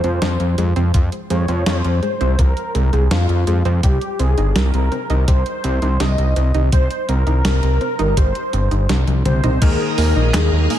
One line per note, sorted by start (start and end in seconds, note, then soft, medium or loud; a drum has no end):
0.00 0.20 F2 medium
0.00 0.20 C4 medium
0.00 0.58 C5 loud
0.00 closed hi-hat soft
0.22 0.38 F2 loud
0.22 0.38 F3 medium
0.22 snare loud
0.22 closed hi-hat medium
0.40 0.56 F2 medium
0.40 closed hi-hat soft
0.58 0.74 F2 medium
0.58 0.74 G#3 medium
0.58 closed hi-hat medium
0.76 0.92 F2 medium
0.76 0.93 C4 loud
0.76 closed hi-hat soft
0.94 1.10 F2 loud
0.94 1.11 F3 loud
0.94 kick loud
0.94 closed hi-hat medium
1.12 closed hi-hat soft
1.30 1.46 F2 medium
1.30 1.40 G#3 medium
1.30 1.78 C#5 loud
1.30 closed hi-hat medium
1.48 1.64 F2 medium
1.48 1.65 C4 medium
1.48 closed hi-hat soft
1.66 1.82 F2 loud
1.66 1.83 F3 medium
1.66 snare loud
1.66 closed hi-hat medium
1.78 1.99 C5 loud
1.84 2.00 F2 medium
1.84 closed hi-hat soft
2.03 2.19 G#3 medium
2.03 2.40 C5 medium
2.03 closed hi-hat soft
2.21 2.36 C2 medium
2.21 2.38 C4 loud
2.21 closed hi-hat soft
2.39 2.54 C2 loud
2.39 2.56 F3 loud
2.39 2.92 A#4 loud
2.39 kick loud
2.39 closed hi-hat medium
2.57 closed hi-hat soft
2.75 2.91 C2 medium
2.75 2.85 G#3 medium
2.75 closed hi-hat medium
2.93 3.09 C2 medium
2.93 3.09 C4 medium
2.93 3.01 G#4 medium
2.93 closed hi-hat soft
3.11 3.27 F2 loud
3.11 3.27 F3 medium
3.11 3.61 F4 medium
3.11 snare loud
3.11 closed hi-hat medium
3.29 3.45 F2 medium
3.29 closed hi-hat soft
3.47 3.63 F2 medium
3.47 3.63 G#3 medium
3.47 closed hi-hat medium
3.65 3.81 F2 medium
3.65 3.83 C4 loud
3.65 closed hi-hat soft
3.83 3.99 C2 loud
3.83 4.01 G3 loud
3.83 4.21 G4 loud
3.83 kick loud
3.83 closed hi-hat medium
4.01 closed hi-hat soft
4.19 4.35 C2 medium
4.19 4.29 C4 medium
4.19 4.57 G#4 loud
4.19 closed hi-hat medium
4.38 4.53 G1 medium
4.38 4.54 D#4 medium
4.38 closed hi-hat soft
4.56 4.71 C2 loud
4.56 4.72 G3 medium
4.56 5.29 A#4 loud
4.56 snare loud
4.56 closed hi-hat medium
4.74 4.89 C2 medium
4.74 closed hi-hat soft
4.92 5.08 C4 medium
4.92 closed hi-hat soft
5.10 5.26 C2 medium
5.10 5.27 D#4 loud
5.10 closed hi-hat soft
5.28 5.44 C2 loud
5.28 5.45 G3 loud
5.28 6.02 C5 loud
5.28 kick loud
5.28 closed hi-hat medium
5.46 closed hi-hat soft
5.64 5.80 C2 medium
5.64 5.74 C4 medium
5.64 closed hi-hat medium
5.82 5.98 C2 medium
5.82 5.98 D#4 medium
5.82 closed hi-hat soft
6.00 6.16 C2 loud
6.00 6.16 G3 medium
6.00 6.55 D#5 loud
6.00 snare loud
6.00 closed hi-hat medium
6.18 6.34 C2 medium
6.18 closed hi-hat soft
6.36 6.52 C2 loud
6.36 6.53 C4 medium
6.36 closed hi-hat medium
6.54 6.70 C2 medium
6.54 6.72 D#4 loud
6.54 closed hi-hat soft
6.72 6.88 C2 loud
6.72 6.90 G3 loud
6.72 7.06 C5 loud
6.72 kick loud
6.72 closed hi-hat medium
6.91 closed hi-hat soft
7.09 7.24 C2 medium
7.09 7.18 C4 medium
7.09 8.19 A#4 loud
7.09 closed hi-hat medium
7.27 7.43 C2 medium
7.27 7.43 D#4 medium
7.27 closed hi-hat soft
7.45 7.61 C2 loud
7.45 7.61 G3 medium
7.45 snare loud
7.45 closed hi-hat medium
7.63 7.79 C2 medium
7.63 closed hi-hat soft
7.81 7.97 C4 medium
7.81 closed hi-hat soft
7.99 8.15 G1 medium
7.99 8.16 D#4 loud
7.99 closed hi-hat soft
8.17 8.33 G1 loud
8.17 8.34 G3 loud
8.17 8.89 C5 loud
8.17 kick loud
8.17 closed hi-hat medium
8.35 closed hi-hat soft
8.53 8.69 G1 loud
8.53 8.63 C4 medium
8.53 closed hi-hat medium
8.71 8.87 G1 medium
8.71 8.87 D#4 medium
8.71 closed hi-hat soft
8.89 9.05 C2 loud
8.89 9.05 G3 medium
8.89 snare loud
8.89 closed hi-hat medium
9.07 9.23 C2 medium
9.07 closed hi-hat soft
9.07 high tom soft
9.26 9.41 C2 medium
9.26 9.42 C4 medium
9.26 9.63 C5 loud
9.26 closed hi-hat medium
9.26 mid tom medium
9.44 9.59 C2 medium
9.44 9.61 D#4 loud
9.44 closed hi-hat soft
9.44 mid tom medium
9.62 9.77 D#2 loud
9.62 10.79 D#3 medium
9.62 9.79 G#3 loud
9.62 10.79 A#3 medium
9.62 10.79 D#4 medium
9.62 10.79 G#4 loud
9.62 10.79 G#4 medium
9.62 10.34 A#4 loud
9.62 10.79 A#4 medium
9.62 10.79 D#5 medium
9.62 10.79 A#5 medium
9.62 kick loud
9.62 closed hi-hat medium
9.62 crash loud
9.98 10.14 D#2 medium
9.98 10.08 A#3 medium
9.98 open hi-hat medium
10.16 10.32 A#1 medium
10.16 10.32 D#4 medium
10.34 10.50 D#2 loud
10.34 10.50 G#3 medium
10.34 snare loud
10.34 clap loud
10.34 closed hi-hat loud
10.52 10.68 D#2 medium
10.70 10.79 A#3 medium
10.70 10.79 G#4 loud
10.70 open hi-hat medium